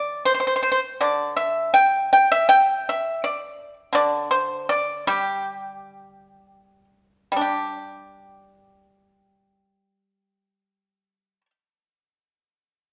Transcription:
0, 0, Header, 1, 2, 480
1, 0, Start_track
1, 0, Tempo, 748130
1, 658, Time_signature, 2, 2, 24, 8
1, 1614, Tempo, 724638
1, 3054, Tempo, 790514
1, 3534, Tempo, 891530
1, 4014, Tempo, 1071429
1, 4494, Tempo, 1145038
1, 4974, Tempo, 1092896
1, 5934, Tempo, 1156069
1, 6825, End_track
2, 0, Start_track
2, 0, Title_t, "Pipa"
2, 0, Program_c, 0, 105
2, 0, Note_on_c, 0, 52, 71
2, 0, Note_on_c, 0, 74, 72
2, 154, Note_off_c, 0, 74, 0
2, 163, Note_on_c, 0, 72, 84
2, 215, Note_off_c, 0, 72, 0
2, 221, Note_on_c, 0, 72, 58
2, 249, Note_off_c, 0, 72, 0
2, 256, Note_on_c, 0, 72, 64
2, 294, Note_off_c, 0, 72, 0
2, 302, Note_on_c, 0, 72, 55
2, 351, Note_off_c, 0, 72, 0
2, 358, Note_on_c, 0, 72, 64
2, 394, Note_off_c, 0, 72, 0
2, 402, Note_on_c, 0, 72, 58
2, 409, Note_off_c, 0, 52, 0
2, 452, Note_off_c, 0, 72, 0
2, 459, Note_on_c, 0, 72, 64
2, 507, Note_off_c, 0, 72, 0
2, 645, Note_on_c, 0, 50, 59
2, 647, Note_on_c, 0, 74, 78
2, 872, Note_off_c, 0, 74, 0
2, 876, Note_on_c, 0, 76, 82
2, 1105, Note_off_c, 0, 76, 0
2, 1114, Note_on_c, 0, 79, 96
2, 1344, Note_off_c, 0, 79, 0
2, 1365, Note_on_c, 0, 79, 88
2, 1480, Note_off_c, 0, 79, 0
2, 1486, Note_on_c, 0, 76, 91
2, 1594, Note_off_c, 0, 76, 0
2, 1596, Note_on_c, 0, 79, 102
2, 1834, Note_off_c, 0, 79, 0
2, 1862, Note_on_c, 0, 76, 84
2, 2082, Note_off_c, 0, 76, 0
2, 2092, Note_off_c, 0, 50, 0
2, 2093, Note_on_c, 0, 74, 93
2, 2420, Note_off_c, 0, 74, 0
2, 2548, Note_on_c, 0, 50, 70
2, 2563, Note_on_c, 0, 74, 97
2, 2786, Note_off_c, 0, 74, 0
2, 2801, Note_on_c, 0, 72, 84
2, 3035, Note_off_c, 0, 72, 0
2, 3056, Note_on_c, 0, 74, 94
2, 3275, Note_off_c, 0, 74, 0
2, 3287, Note_on_c, 0, 55, 70
2, 3287, Note_on_c, 0, 67, 80
2, 4007, Note_off_c, 0, 50, 0
2, 4224, Note_off_c, 0, 67, 0
2, 4433, Note_off_c, 0, 55, 0
2, 4438, Note_on_c, 0, 55, 55
2, 4459, Note_on_c, 0, 62, 56
2, 4480, Note_on_c, 0, 67, 54
2, 6197, Note_off_c, 0, 55, 0
2, 6216, Note_off_c, 0, 62, 0
2, 6236, Note_off_c, 0, 67, 0
2, 6825, End_track
0, 0, End_of_file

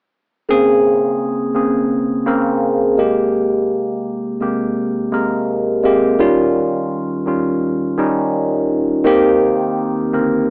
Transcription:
0, 0, Header, 1, 2, 480
1, 0, Start_track
1, 0, Tempo, 714286
1, 321, Time_signature, 4, 2, 24, 8
1, 7056, End_track
2, 0, Start_track
2, 0, Title_t, "Tine electric piano"
2, 0, Program_c, 0, 4
2, 327, Note_on_c, 0, 49, 82
2, 329, Note_on_c, 0, 58, 74
2, 336, Note_on_c, 0, 60, 79
2, 340, Note_on_c, 0, 68, 104
2, 431, Control_c, 0, 64, 127
2, 938, Note_off_c, 0, 49, 0
2, 939, Note_off_c, 0, 58, 0
2, 943, Note_off_c, 0, 60, 0
2, 945, Note_off_c, 0, 68, 0
2, 1035, Note_on_c, 0, 49, 59
2, 1039, Note_on_c, 0, 58, 56
2, 1042, Note_on_c, 0, 60, 57
2, 1048, Note_on_c, 0, 68, 64
2, 1449, Note_off_c, 0, 49, 0
2, 1451, Note_off_c, 0, 58, 0
2, 1452, Note_off_c, 0, 60, 0
2, 1455, Note_off_c, 0, 68, 0
2, 1517, Note_on_c, 0, 49, 74
2, 1519, Note_on_c, 0, 58, 66
2, 1524, Note_on_c, 0, 60, 68
2, 1530, Note_on_c, 0, 70, 80
2, 1998, Note_on_c, 0, 48, 65
2, 1999, Note_off_c, 0, 49, 0
2, 1999, Note_off_c, 0, 58, 0
2, 2002, Note_off_c, 0, 60, 0
2, 2003, Note_on_c, 0, 56, 70
2, 2006, Note_off_c, 0, 70, 0
2, 2007, Note_on_c, 0, 58, 60
2, 2011, Control_c, 0, 64, 0
2, 2011, Note_on_c, 0, 67, 79
2, 2109, Control_c, 0, 64, 127
2, 2804, Note_off_c, 0, 48, 0
2, 2807, Note_off_c, 0, 56, 0
2, 2808, Note_off_c, 0, 58, 0
2, 2810, Note_off_c, 0, 67, 0
2, 2959, Note_on_c, 0, 48, 60
2, 2963, Note_on_c, 0, 56, 48
2, 2966, Note_on_c, 0, 58, 58
2, 2972, Note_on_c, 0, 67, 64
2, 3371, Note_off_c, 0, 48, 0
2, 3373, Note_off_c, 0, 56, 0
2, 3374, Note_off_c, 0, 58, 0
2, 3377, Note_off_c, 0, 67, 0
2, 3438, Note_on_c, 0, 48, 62
2, 3442, Note_on_c, 0, 56, 61
2, 3444, Note_on_c, 0, 58, 56
2, 3452, Note_on_c, 0, 70, 76
2, 3851, Note_off_c, 0, 48, 0
2, 3853, Note_off_c, 0, 56, 0
2, 3854, Note_off_c, 0, 58, 0
2, 3858, Note_off_c, 0, 70, 0
2, 3919, Note_on_c, 0, 48, 70
2, 3923, Note_on_c, 0, 56, 61
2, 3928, Note_on_c, 0, 58, 67
2, 3932, Note_on_c, 0, 67, 79
2, 4125, Note_off_c, 0, 48, 0
2, 4127, Note_off_c, 0, 56, 0
2, 4130, Note_off_c, 0, 58, 0
2, 4132, Note_off_c, 0, 67, 0
2, 4159, Note_on_c, 0, 51, 93
2, 4162, Note_on_c, 0, 55, 90
2, 4167, Note_on_c, 0, 61, 79
2, 4169, Note_on_c, 0, 65, 95
2, 4170, Control_c, 0, 64, 0
2, 4300, Control_c, 0, 64, 127
2, 4774, Note_off_c, 0, 51, 0
2, 4776, Note_off_c, 0, 55, 0
2, 4778, Note_off_c, 0, 61, 0
2, 4779, Note_off_c, 0, 65, 0
2, 4880, Note_on_c, 0, 51, 54
2, 4883, Note_on_c, 0, 55, 53
2, 4887, Note_on_c, 0, 61, 56
2, 4890, Note_on_c, 0, 65, 67
2, 5291, Note_off_c, 0, 51, 0
2, 5293, Note_off_c, 0, 55, 0
2, 5295, Note_off_c, 0, 61, 0
2, 5297, Note_off_c, 0, 65, 0
2, 5360, Note_on_c, 0, 51, 74
2, 5362, Note_on_c, 0, 55, 68
2, 5368, Note_on_c, 0, 61, 71
2, 5370, Note_on_c, 0, 63, 80
2, 5975, Note_off_c, 0, 51, 0
2, 5976, Note_off_c, 0, 55, 0
2, 5979, Note_off_c, 0, 61, 0
2, 5979, Note_off_c, 0, 63, 0
2, 6080, Note_on_c, 0, 51, 97
2, 6085, Note_on_c, 0, 58, 88
2, 6088, Control_c, 0, 64, 0
2, 6089, Note_on_c, 0, 60, 83
2, 6092, Note_on_c, 0, 67, 103
2, 6217, Control_c, 0, 64, 127
2, 6694, Note_off_c, 0, 51, 0
2, 6697, Note_off_c, 0, 58, 0
2, 6699, Note_off_c, 0, 60, 0
2, 6701, Note_off_c, 0, 67, 0
2, 6803, Note_on_c, 0, 50, 47
2, 6807, Note_on_c, 0, 58, 59
2, 6811, Note_on_c, 0, 60, 59
2, 6816, Note_on_c, 0, 70, 68
2, 6847, Note_on_c, 0, 51, 55
2, 6854, Note_off_c, 0, 50, 0
2, 7056, Note_off_c, 0, 51, 0
2, 7056, Note_off_c, 0, 58, 0
2, 7056, Note_off_c, 0, 60, 0
2, 7056, Note_off_c, 0, 70, 0
2, 7056, End_track
0, 0, End_of_file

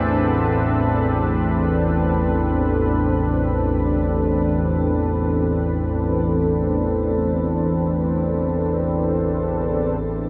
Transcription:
0, 0, Header, 1, 3, 480
1, 0, Start_track
1, 0, Key_signature, 0, "minor"
1, 0, Tempo, 500000
1, 9882, End_track
2, 0, Start_track
2, 0, Title_t, "Ambient pad"
2, 0, Program_c, 0, 92
2, 0, Note_on_c, 0, 60, 61
2, 0, Note_on_c, 0, 62, 75
2, 0, Note_on_c, 0, 69, 82
2, 0, Note_on_c, 0, 71, 64
2, 9882, Note_off_c, 0, 60, 0
2, 9882, Note_off_c, 0, 62, 0
2, 9882, Note_off_c, 0, 69, 0
2, 9882, Note_off_c, 0, 71, 0
2, 9882, End_track
3, 0, Start_track
3, 0, Title_t, "Synth drone"
3, 0, Program_c, 1, 95
3, 0, Note_on_c, 1, 33, 70
3, 0, Note_on_c, 1, 40, 73
3, 9618, Note_off_c, 1, 40, 0
3, 9624, Note_off_c, 1, 33, 0
3, 9630, Note_on_c, 1, 40, 70
3, 9635, Note_on_c, 1, 33, 62
3, 9882, Note_off_c, 1, 33, 0
3, 9882, Note_off_c, 1, 40, 0
3, 9882, End_track
0, 0, End_of_file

